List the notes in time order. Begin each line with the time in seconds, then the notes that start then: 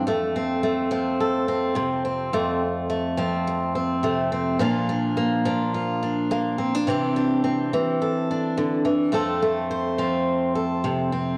0.07 F2 A3
0.36 C4
0.63 A3
0.91 F3 C4
1.20 A4
1.48 C4
1.75 C3, muted steel-string acoustic guitar stroke
2.05 C4
2.33 F2 A3
2.90 A3
3.17 F3 C4
3.47 muted steel-string acoustic guitar stroke
3.75 C4
4.03 C3 A3
4.32 C4
4.59 A#2 F3 A#3 D4 F4
4.89 D4
5.17 A#3
5.45 F3 D4
5.74 F4
6.03 D4
6.31 A#3, muted steel-string acoustic guitar stroke
6.58 C4
6.75 D4
6.87 C3 E3 C4 D4 G4
7.16 D4
7.44 C4
7.73 E3, muted steel-string acoustic guitar stroke
8.02 A4
8.31 D4
8.57 D3
8.85 E3
9.12 F2 A3 C4 A4
9.42 A3
9.71 C5
9.98 F3 C4
10.55 A4
10.84 C3
11.12 C4